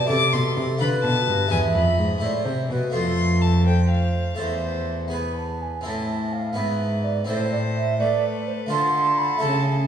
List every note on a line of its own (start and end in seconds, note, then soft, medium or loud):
0.05 0.76 A3 soft
0.05 0.77 E4 soft
0.05 0.78 A4 soft
0.05 0.79 A4 medium
0.05 0.34 D6 loud
0.10 0.32 C3 medium
0.10 0.31 C3 soft
0.33 0.54 B2 soft
0.33 0.55 B2 medium
0.33 0.80 C6 medium
0.57 0.79 C3 medium
0.57 0.78 C3 soft
0.78 1.03 D3 medium
0.78 1.02 D3 medium
0.78 1.48 F4 soft
0.78 1.49 B4 medium
0.78 1.49 B4 soft
0.78 0.88 B5 medium
1.03 1.26 B2 medium
1.03 1.26 B2 soft
1.03 1.50 A5 medium
1.28 1.49 G2 soft
1.28 1.50 G2 medium
1.47 1.72 G#3 soft
1.47 2.19 E4 soft
1.47 2.20 B4 soft
1.47 1.96 E5 medium
1.47 1.59 G#5 medium
1.51 1.73 E2 medium
1.51 1.73 E2 soft
1.75 1.97 F2 medium
1.75 1.96 F2 soft
1.75 2.21 B5 medium
1.98 2.21 G#2 medium
1.98 2.20 G#2 soft
2.18 2.44 A2 medium
2.18 2.89 A3 soft
2.18 2.90 E4 soft
2.18 2.91 C5 soft
2.23 2.44 A2 soft
2.23 2.46 D5 medium
2.45 2.68 C3 medium
2.45 2.68 C3 soft
2.45 2.69 C5 medium
2.70 2.92 B2 medium
2.70 2.92 B2 soft
2.70 2.93 B4 soft
2.90 4.33 A3 soft
2.90 4.34 F4 soft
2.90 3.68 A4 medium
2.90 4.35 C5 soft
2.94 4.35 F2 medium
2.94 4.35 F2 soft
2.94 3.43 C6 medium
3.42 3.66 A5 medium
3.67 4.38 C5 medium
3.67 3.89 G5 medium
3.90 4.41 F5 medium
4.35 5.63 E2 soft
4.35 5.08 A3 soft
4.35 5.09 A4 soft
4.35 5.10 C5 soft
4.35 5.06 E5 medium
4.39 5.61 E2 soft
4.39 5.13 C5 medium
5.08 5.81 B3 soft
5.08 5.82 G#4 soft
5.08 5.83 B4 soft
5.13 5.35 B5 medium
5.37 5.63 A5 medium
5.62 5.84 G#5 soft
5.81 6.53 A2 medium
5.81 6.53 C4 soft
5.81 6.53 E4 soft
5.81 6.55 A4 soft
5.81 6.35 A5 medium
5.86 6.53 A2 soft
6.33 6.59 F5 medium
6.53 7.27 G#2 medium
6.53 7.24 B3 soft
6.53 7.24 E4 soft
6.53 7.26 B4 soft
6.57 7.25 G#2 soft
6.57 7.25 B4 medium
6.57 7.06 E5 medium
7.04 7.27 D5 medium
7.24 8.01 A2 medium
7.24 8.65 C4 soft
7.24 8.66 E4 soft
7.24 8.66 A4 soft
7.24 7.52 C5 medium
7.29 7.96 A2 soft
7.29 8.02 C5 medium
7.52 7.58 D5 medium
7.75 7.98 E5 medium
7.99 8.70 A3 medium
7.99 8.65 A3 soft
7.99 8.73 B4 medium
7.99 8.25 D5 medium
8.47 8.53 C5 medium
8.66 9.36 A3 soft
8.66 9.39 F4 soft
8.66 9.39 A4 soft
8.71 9.41 D3 medium
8.71 9.38 D3 soft
8.71 9.87 A4 medium
8.71 9.19 C6 medium
9.18 9.43 B5 medium
9.37 9.87 A3 soft
9.37 9.87 E4 soft
9.37 9.87 A4 soft
9.41 9.87 C#3 medium
9.41 9.87 A5 medium